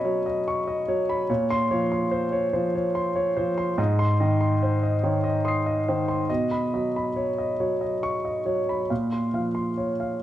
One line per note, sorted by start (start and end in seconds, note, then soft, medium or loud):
0.00 1.25 B2 medium
0.00 0.05 F#3 soft
0.00 1.31 C#4 soft
0.00 0.05 C#5 medium
0.00 0.26 D#5 medium
0.00 1.09 B5 medium
0.05 0.38 F#3 soft
0.05 0.26 C#5 soft
0.26 0.59 D#5 soft
0.48 0.80 C#6 medium
0.68 1.00 D#5 soft
0.88 1.21 F#3 soft
0.88 1.21 C#5 medium
1.09 1.29 B5 medium
1.29 3.75 A#2 medium
1.29 1.62 C#5 soft
1.50 1.83 C6 medium
1.71 2.04 F3 soft
1.71 2.04 C#5 medium
1.92 2.24 C6 medium
2.11 2.45 C5 medium
2.32 2.66 C#5 medium
2.53 2.87 F3 medium
2.53 2.74 C5 soft
2.75 3.08 C#5 medium
2.95 3.28 C6 soft
3.16 3.49 C#5 medium
3.37 3.70 F3 soft
3.37 3.70 C5 medium
3.58 3.78 C6 medium
3.78 6.25 G#2 medium
3.78 4.12 D#5 medium
3.99 4.33 C6 medium
4.20 4.54 D#3 soft
4.20 4.54 D#5 medium
4.41 4.74 C6 medium
4.63 4.95 C5 medium
4.83 5.16 D#5 medium
5.03 5.36 D#3 medium
5.03 5.24 C#5 soft
5.24 5.57 D#5 medium
5.45 5.78 C6 medium
5.45 6.25 D#6 soft
5.45 6.27 C7 soft
5.66 5.99 D#5 soft
5.88 6.21 D#3 soft
5.88 6.21 C5 medium
6.08 6.29 C6 soft
6.29 8.87 B2 medium
6.29 6.64 D#5 medium
6.51 6.86 B5 medium
6.73 7.07 F#3 soft
6.73 7.08 D#5 soft
6.96 7.30 B5 soft
7.16 7.50 C#5 soft
7.38 7.72 D#5 soft
7.60 7.94 F#3 soft
7.60 7.81 C#5 soft
7.81 8.15 D#5 soft
8.03 8.38 C#6 medium
8.25 8.59 D#5 soft
8.45 8.81 F#3 soft
8.45 8.81 C#5 soft
8.69 8.91 B5 soft
8.90 10.23 A#2 soft
8.90 9.26 F5 soft
9.12 9.48 C6 soft
9.34 9.70 F3 soft
9.34 9.70 F5 soft
9.55 9.91 C6 soft
9.78 10.14 C#5 soft
10.00 10.23 F5 soft